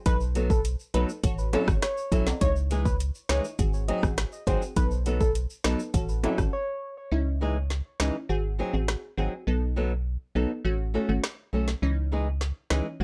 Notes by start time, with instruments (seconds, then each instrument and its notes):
0.06 fm bass B1, synth stab D#4 A4 B4, soft synth lead B4, kick, closed hi-hat, shaker
0.21 shaker
0.35 nylon-string guitar F#3 B3 D#4 A4, closed hi-hat, shaker
0.50 soft synth lead A4, kick, shaker
0.65 closed hi-hat, shaker
0.80 shaker
0.94 fm bass B1, nylon-string guitar F#3 B3 D#4 A4, synth stab D#4 A4 B4, soft synth lead B4, closed hi-hat
1.09 shaker
1.23 fm bass A1, synth stab F#4 A4 C#5, kick, closed hi-hat, shaker
1.38 shaker
1.53 nylon-string guitar F#3 C#4 E4 A4, closed hi-hat, high timbale
1.67 fm bass G#1, synth stab F#4 A4 C#5, kick, cross-stick, shaker
1.82 soft synth lead C#5, cross-stick, snare, closed hi-hat, shaker
1.97 shaker
2.12 fm bass B1, nylon-string guitar F#3 C#4 E4 A4, kick, closed hi-hat, shaker
2.27 snare, high timbale, shaker
2.41 fm bass C#2, synth stab D#4 E4 C#5, soft synth lead C#5, kick, closed hi-hat, shaker
2.56 shaker
2.71 nylon-string guitar E3 G#3 D#4 G#4, closed hi-hat, shaker
2.85 soft synth lead B4, kick, shaker
3.00 closed hi-hat, shaker
3.15 shaker
3.29 fm bass C#2, nylon-string guitar E3 G#3 D#4 G#4, synth stab D#4 E4 C#5, soft synth lead C#5, cross-stick, snare, closed hi-hat
3.44 shaker
3.59 fm bass G#1, synth stab C4 F#4 G#4, kick, closed hi-hat, shaker
3.73 shaker
3.88 nylon-string guitar F#3 C4 D#4 G#4, soft synth lead D#5, closed hi-hat
4.03 fm bass A1, synth stab C4 F#4 G#4, kick, cross-stick, shaker
4.18 cross-stick, snare, closed hi-hat, shaker
4.32 shaker
4.47 fm bass G#1, nylon-string guitar F#3 C4 D#4 G#4, synth stab C4 F#4 G#4, soft synth lead C5, kick, closed hi-hat, shaker
4.62 shaker
4.76 fm bass B1, synth stab B3 D#4 A4, soft synth lead B4, kick, closed hi-hat, shaker
4.91 shaker
5.06 nylon-string guitar F#3 B3 D#4 A4, closed hi-hat, shaker
5.21 soft synth lead A4, kick, shaker
5.35 closed hi-hat, shaker
5.50 shaker
5.64 fm bass B1, nylon-string guitar F#3 B3 D#4 A4, synth stab B3 D#4 A4, soft synth lead B4, cross-stick, snare, closed hi-hat
5.79 shaker
5.94 fm bass A1, synth stab C#4 F#4 A4, kick, closed hi-hat, shaker
6.09 shaker
6.23 nylon-string guitar F#3 C#4 E4 A4, closed hi-hat, high timbale
6.38 fm bass G#1, synth stab C#4 F#4 A4, kick, cross-stick, shaker
6.53 soft synth lead C#5
7.12 fm bass C#2, synth stab C#4 D#4 E4
7.41 nylon-string guitar E3 G#3 D#4 G#4
7.70 snare
8.00 fm bass C#2, nylon-string guitar E3 G#3 D#4 G#4, synth stab C#4 D#4 E4, cross-stick, snare
8.29 fm bass G#1, synth stab C4 F#4 G#4
8.59 nylon-string guitar F#3 C4 D#4 G#4
8.73 fm bass A1, synth stab C4 F#4 G#4
8.88 cross-stick, snare
9.17 fm bass G#1, nylon-string guitar F#3 C4 D#4 G#4, synth stab C4 F#4 G#4
9.47 fm bass B1, synth stab B3 D#4 A4
9.76 nylon-string guitar F#3 B3 D#4 A4
10.35 fm bass B1, nylon-string guitar F#3 B3 D#4 A4, synth stab B3 D#4 A4
10.65 fm bass A1, synth stab A3 C#4 F#4
10.94 nylon-string guitar A3 C#4 F#4 A4
11.09 fm bass G#1, synth stab A3 C#4 F#4
11.24 cross-stick, snare
11.53 fm bass B1, nylon-string guitar A3 C#4 F#4 A4
11.68 snare
11.82 fm bass C#2, synth stab E3 C#4 D#4
12.12 nylon-string guitar E3 G#3 D#4 G#4
12.41 snare
12.70 fm bass C#2, nylon-string guitar E3 G#3 D#4 G#4, synth stab E3 C#4 D#4, cross-stick, snare
13.00 fm bass G#1, synth stab G#3 C4 F#4